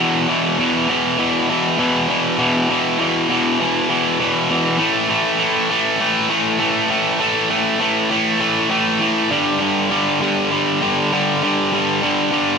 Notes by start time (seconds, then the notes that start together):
0.00 E2 B2 E3
0.28 E2 B2 E3
0.58 E2 B2 E3
0.89 E2 B2 E3
1.18 E2 B2 E3
1.49 E2 B2 E3
1.78 E2 B2 E3
2.09 E2 B2 E3
2.38 E2 B2 E3
2.69 E2 B2 E3
2.99 E2 B2 E3
3.29 E2 B2 E3
3.59 E2 B2 E3
3.89 E2 B2 E3
4.19 E2 B2 E3
4.50 E2 B2 E3
4.79 A2 E3 A3
5.09 A2 E3 A3
5.38 A2 E3 A3
5.69 A2 E3 A3
6.00 A2 E3 A3
6.29 A2 E3 A3
6.59 A2 E3 A3
6.89 A2 E3 A3
7.20 A2 E3 A3
7.50 A2 E3 A3
7.80 A2 E3 A3
8.10 A2 E3 A3
8.40 A2 E3 A3
8.70 A2 E3 A3
9.01 A2 E3 A3
9.31 G2 D3 G3
9.60 G2 D3 G3
9.90 G2 D3 G3
10.21 G2 D3 G3
10.51 G2 D3 G3
10.81 G2 D3 G3
11.12 G2 D3 G3
11.42 G2 D3 G3
11.72 G2 D3 G3
12.02 G2 D3 G3
12.31 G2 D3 G3